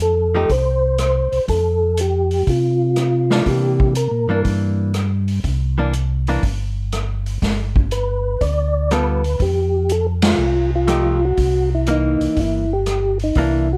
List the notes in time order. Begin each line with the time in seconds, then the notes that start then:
Already playing: F2
0.00 A4, closed hi-hat
0.35 F3 A3 D#4 G4
0.49 C2 C5, kick, open hi-hat
0.98 C5, cross-stick, closed hi-hat
1.32 C2, open hi-hat
1.48 F2 A4, kick, open hi-hat
1.97 G4, closed hi-hat
2.31 open hi-hat
2.47 C3 F4, kick, open hi-hat
2.96 cross-stick, closed hi-hat
3.00 F4
3.31 E3 A#3 D4, snare
3.46 C3 G4, kick, open hi-hat
3.80 kick
3.95 A#4, closed hi-hat
4.11 A#2
4.28 G2 E3 A#3 D4
4.44 G2, kick, open hi-hat
4.94 cross-stick, closed hi-hat
5.28 open hi-hat
5.44 C2, kick, open hi-hat
5.78 E3 A#3 D4
5.93 closed hi-hat
6.27 E3 A#3 D4, open hi-hat
6.43 G1, kick, open hi-hat
6.92 cross-stick, closed hi-hat
7.26 open hi-hat
7.42 G1, kick, snare, open hi-hat
7.76 kick
7.91 B4, closed hi-hat
8.41 D2 D5, kick, open hi-hat
8.91 G3 B3 F4 A4 B4, cross-stick, closed hi-hat
9.24 open hi-hat
9.39 F2 G4, kick, open hi-hat
9.89 A4, closed hi-hat
10.22 F4, snare, ride
10.38 C2
10.76 F4
10.88 F3 A3 D#4 G4, cross-stick, closed hi-hat
11.25 F#4
11.37 C2, kick, open hi-hat
11.75 E4
11.86 E3 A#3 D#4, closed hi-hat
12.20 C2, open hi-hat
12.36 G1 E4, kick, open hi-hat
12.73 G4
12.86 cross-stick, closed hi-hat
13.19 open hi-hat
13.24 D#4
13.35 C2 E3 A#3 D4 E4, kick, open hi-hat
13.73 F#4